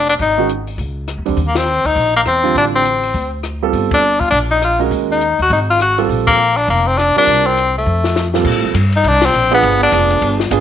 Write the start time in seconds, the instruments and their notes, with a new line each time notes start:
Already playing: upright bass F1
0.09 tenor saxophone D4
0.19 upright bass G#1, tenor saxophone D#4, kick, open hi-hat
0.38 grand piano D#3 G#3 C#4 F#4
0.49 closed hi-hat
0.67 open hi-hat
0.78 upright bass C#2, kick, open hi-hat
1.08 cross-stick, closed hi-hat
1.18 upright bass D#2
1.25 upright bass D2, grand piano D3 G3 C4 D4, open hi-hat
1.37 upright bass D#2, kick, open hi-hat
1.48 tenor saxophone A#3
1.55 tenor saxophone C4, snare, ride
1.84 upright bass D2, tenor saxophone D#4, open hi-hat
1.96 upright bass A#1, kick, open hi-hat
2.16 tenor saxophone A#3
2.25 upright bass E2, tenor saxophone C4, cross-stick, closed hi-hat
2.43 grand piano D3 G3 C4 F4, open hi-hat
2.55 upright bass A1, tenor saxophone D4, kick, open hi-hat
2.75 tenor saxophone C4
2.85 closed hi-hat
3.03 open hi-hat
3.14 upright bass D2, kick, open hi-hat
3.43 cross-stick, closed hi-hat
3.62 grand piano G3 C4 F4 A4
3.73 upright bass G1, kick, open hi-hat
3.91 tenor saxophone D4, kick, ride
4.20 tenor saxophone F4, kick, open hi-hat
4.31 upright bass A#1, tenor saxophone D4, kick, open hi-hat
4.51 tenor saxophone D#4
4.62 tenor saxophone F4, cross-stick, closed hi-hat
4.79 grand piano G#3 C#4 F#4 A#4, open hi-hat
4.91 upright bass D#2, kick, open hi-hat
5.12 tenor saxophone D#4
5.21 closed hi-hat
5.39 upright bass D#2, tenor saxophone F#4, open hi-hat
5.50 upright bass G#1, tenor saxophone D#4, kick, open hi-hat
5.70 tenor saxophone F4
5.79 tenor saxophone F#4, cross-stick, closed hi-hat
5.98 grand piano G3 C4 F4 A4, open hi-hat
6.09 upright bass A#1, kick, open hi-hat
6.27 tenor saxophone A#3, kick, ride
6.57 tenor saxophone D4
6.68 upright bass F1, tenor saxophone A#3, kick, open hi-hat
6.87 tenor saxophone C4
6.98 tenor saxophone D4, cross-stick, closed hi-hat
7.16 grand piano G3 C4 F4 A#4, tenor saxophone D4, muted upright bass stroke, open hi-hat
7.27 upright bass C2, kick, open hi-hat
7.47 tenor saxophone C4
7.57 closed hi-hat
7.78 tenor saxophone A3
7.86 upright bass F2
8.04 snare
8.16 snare
8.34 grand piano A#2 G3 C4 F4 A4, snare
8.45 upright bass A#2, kick, crash
8.55 upright bass A2
8.65 upright bass F2
8.74 upright bass G2, kick, hi-hat pedal, ride
8.92 tenor saxophone D#4, ride
9.04 upright bass C2, kick, ride
9.08 tenor saxophone D4
9.22 snare, ride
9.26 tenor saxophone C4
9.33 upright bass A#1, hi-hat pedal
9.51 grand piano B3 D4 F4 G#4, tenor saxophone B3
9.63 upright bass G1, kick, ride
9.83 tenor saxophone D4
9.92 upright bass F1, grand piano B3 D4 F4 G#4, kick, hi-hat pedal, ride
10.10 ride
10.21 upright bass G1, kick, ride
10.40 snare
10.51 upright bass G#1, grand piano B3 D4 F4 G#4, kick, hi-hat pedal, ride